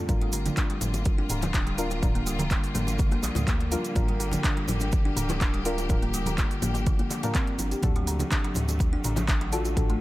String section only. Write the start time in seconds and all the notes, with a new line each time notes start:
0.09 D3 G3 A#3 F4
3.96 G4
7.83 D3 F#3 A3